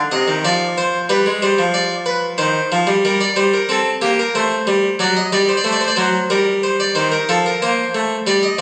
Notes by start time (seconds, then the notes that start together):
0.11 C3 D#5
0.28 D#3
0.45 F3 D5
0.78 C5
1.09 G3 B4
1.26 G#3
1.42 G3 C5
1.58 F3
1.74 D5
2.06 B4
2.38 D#3 C5
2.72 F3
2.87 G3
3.05 G3 A#4
3.21 D5
3.36 G3 C5
3.54 A#4
3.69 C4 A4
4.02 A#3 G4
4.20 A#4
4.35 A3 C5
4.67 G3
4.99 F#3 D5
5.17 D#5
5.33 G3 D5
5.49 C5
5.57 D5
5.64 A3 C5
5.72 D5
5.81 C5
5.88 D5
5.96 F#3 C5
6.30 G3 A#4
6.63 C5
6.80 D5
6.95 D#3 C5
7.12 A#4
7.29 F3 A4
7.46 A#4
7.62 A#3 C5
7.95 A3
8.27 G3 D5
8.43 D#5